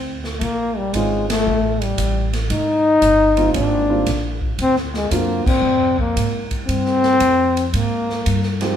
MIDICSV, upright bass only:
0, 0, Header, 1, 3, 480
1, 0, Start_track
1, 0, Tempo, 523560
1, 367, Time_signature, 4, 2, 24, 8
1, 8037, End_track
2, 0, Start_track
2, 0, Title_t, "Upright bass"
2, 0, Program_c, 0, 32
2, 0, Note_on_c, 0, 38, 81
2, 358, Note_off_c, 0, 38, 0
2, 376, Note_on_c, 0, 34, 78
2, 838, Note_off_c, 0, 34, 0
2, 853, Note_on_c, 0, 32, 79
2, 1316, Note_off_c, 0, 32, 0
2, 1344, Note_on_c, 0, 33, 83
2, 1802, Note_off_c, 0, 33, 0
2, 1813, Note_on_c, 0, 33, 88
2, 2276, Note_off_c, 0, 33, 0
2, 2293, Note_on_c, 0, 32, 83
2, 2756, Note_off_c, 0, 32, 0
2, 2764, Note_on_c, 0, 31, 85
2, 3232, Note_off_c, 0, 31, 0
2, 3251, Note_on_c, 0, 32, 85
2, 3715, Note_off_c, 0, 32, 0
2, 3727, Note_on_c, 0, 34, 85
2, 4193, Note_off_c, 0, 34, 0
2, 4204, Note_on_c, 0, 38, 83
2, 4672, Note_off_c, 0, 38, 0
2, 4686, Note_on_c, 0, 42, 83
2, 4987, Note_off_c, 0, 42, 0
2, 5149, Note_on_c, 0, 41, 81
2, 5624, Note_off_c, 0, 41, 0
2, 5649, Note_on_c, 0, 44, 85
2, 6114, Note_off_c, 0, 44, 0
2, 6126, Note_on_c, 0, 43, 79
2, 6592, Note_off_c, 0, 43, 0
2, 6604, Note_on_c, 0, 41, 82
2, 7071, Note_off_c, 0, 41, 0
2, 7090, Note_on_c, 0, 44, 83
2, 7555, Note_off_c, 0, 44, 0
2, 7574, Note_on_c, 0, 43, 84
2, 8036, Note_off_c, 0, 43, 0
2, 8037, End_track
3, 0, Start_track
3, 0, Title_t, "Muted upright bass strokes"
3, 5009, Note_on_c, 9, 29, 37
3, 5101, Note_off_c, 9, 29, 0
3, 8037, End_track
0, 0, End_of_file